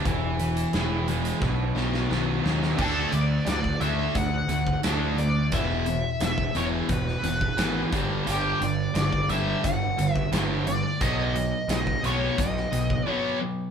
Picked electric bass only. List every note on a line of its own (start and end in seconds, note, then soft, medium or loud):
0.06 0.64 E1 medium
0.73 1.32 E1 medium
1.41 1.71 B1 medium
1.75 2.05 B1 medium
2.10 2.39 B1 medium
2.45 2.74 D#2 medium
2.78 3.04 D2 medium
3.12 3.38 D2 medium
3.46 3.72 D2 medium
3.81 4.06 D2 medium
4.15 4.41 D2 medium
4.48 4.74 D2 medium
4.84 5.53 D2 medium
5.51 6.03 E1 medium
6.21 6.46 E1 medium
6.55 6.81 E1 medium
6.89 7.15 E1 medium
7.23 7.49 E1 medium
7.57 7.83 G#1 medium
7.93 8.18 G1 medium
8.27 8.52 G1 medium
8.61 8.86 G1 medium
8.95 9.20 G1 medium
9.28 9.54 G1 medium
9.64 9.90 G1 medium
9.98 10.23 G1 loud
10.32 10.83 G1 medium
11.01 11.52 B1 medium
11.68 11.94 B1 medium
12.02 12.28 B1 medium
12.38 12.64 B1 medium
12.72 12.97 B1 medium